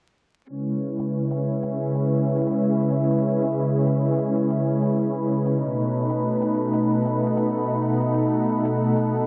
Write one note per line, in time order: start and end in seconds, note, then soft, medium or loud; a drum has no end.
0.49 5.55 C#3 medium
0.49 5.55 G#3 medium
0.49 7.65 C#4 medium
0.49 5.55 E4 medium
0.49 5.55 B4 loud
0.99 closed hi-hat medium
1.28 5.59 E5 medium
1.28 closed hi-hat medium
1.36 5.59 G#4 medium
1.63 closed hi-hat medium
1.95 closed hi-hat medium
2.27 closed hi-hat soft
2.30 closed hi-hat soft
2.36 closed hi-hat soft
2.40 closed hi-hat soft
2.46 closed hi-hat soft
2.51 closed hi-hat medium
2.70 9.27 B5 medium
2.91 closed hi-hat medium
3.54 closed hi-hat medium
3.86 closed hi-hat medium
4.18 closed hi-hat medium
4.50 closed hi-hat medium
4.82 closed hi-hat medium
5.46 closed hi-hat medium
5.59 9.27 B2 medium
5.59 9.27 A3 medium
5.59 9.27 D#4 medium
5.59 8.12 B4 medium
5.86 9.27 A4 medium
6.10 closed hi-hat medium
6.42 closed hi-hat medium
6.74 closed hi-hat medium
6.79 9.27 F#5 medium
7.06 closed hi-hat medium
7.37 closed hi-hat medium
8.01 closed hi-hat medium
8.14 9.27 A4 medium
8.65 closed hi-hat medium
8.97 closed hi-hat medium